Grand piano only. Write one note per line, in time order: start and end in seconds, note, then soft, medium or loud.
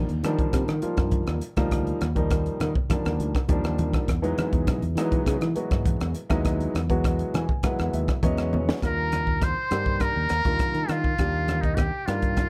0.24 0.69 D#3 medium
0.24 0.69 F3 medium
0.24 0.69 G3 medium
0.24 0.69 A#3 medium
0.24 0.70 D4 medium
0.81 1.39 D#3 medium
0.81 1.39 F3 medium
0.81 1.39 G3 medium
0.81 1.39 A#3 medium
0.81 1.39 F4 medium
1.57 2.02 F3 medium
1.57 2.02 G3 medium
1.57 2.02 A#3 medium
1.57 2.02 D#4 medium
1.57 2.02 F4 medium
2.15 2.72 D#3 medium
2.15 2.72 F3 medium
2.15 2.73 G3 medium
2.15 2.73 A#3 medium
2.15 2.73 D#4 medium
2.89 3.35 D#3 medium
2.89 3.36 F3 medium
2.89 3.35 G3 medium
2.89 3.36 A#3 medium
2.89 3.36 D4 medium
3.48 4.05 D#3 medium
3.48 4.06 F3 medium
3.48 4.06 G3 medium
3.48 4.06 A#3 medium
3.48 4.06 D4 medium
4.22 4.79 E3 medium
4.22 4.80 F#3 medium
4.22 4.80 G#3 medium
4.22 4.80 B3 medium
4.22 4.80 D#4 medium
4.97 5.43 E3 medium
4.97 5.43 F#3 medium
4.97 5.43 G#3 medium
4.97 5.43 B3 medium
4.97 5.43 D#4 loud
5.55 6.13 E3 medium
5.55 6.13 F#3 medium
5.55 6.13 G#3 medium
5.55 6.13 B3 medium
5.55 6.13 F#4 medium
6.29 6.75 F#3 medium
6.29 6.75 G#3 medium
6.29 6.75 B3 medium
6.29 6.76 D#4 loud
6.29 6.75 E4 medium
6.89 7.46 E3 medium
6.89 7.46 F#3 medium
6.89 7.47 G#3 medium
6.89 7.47 B3 medium
6.89 7.47 F#4 medium
7.35 7.62 G#5 medium
7.64 8.09 E3 medium
7.64 8.09 F#3 medium
7.64 8.09 G#3 medium
7.64 8.10 B3 medium
7.64 8.10 E4 medium
7.64 7.91 F#5 medium
7.93 8.21 E5 medium
8.23 8.79 E3 medium
8.23 8.80 F#3 medium
8.23 8.80 G#3 medium
8.23 8.80 B3 medium
8.23 8.80 C#4 loud
8.23 8.51 D#5 medium
8.53 8.80 C#5 medium
8.82 9.50 D#3 medium
8.82 9.51 G3 medium
8.82 9.50 A#3 soft
8.82 9.51 D4 medium
8.82 9.51 F4 medium
9.71 10.28 D#3 medium
9.71 10.28 G3 medium
9.71 10.28 A#3 medium
9.71 10.28 D4 medium
9.71 10.28 G4 medium
10.45 11.02 D#3 medium
10.45 11.02 G3 medium
10.45 11.02 A#3 medium
10.45 11.02 D4 medium
10.45 11.02 F4 medium
11.19 11.87 D#3 medium
11.19 11.87 G3 medium
11.19 11.87 A#3 medium
11.19 11.88 D4 medium
11.19 11.88 G4 medium
12.07 12.49 D#3 medium
12.07 12.49 G3 medium
12.07 12.49 A#3 medium
12.07 12.49 D4 medium
12.07 12.49 F4 medium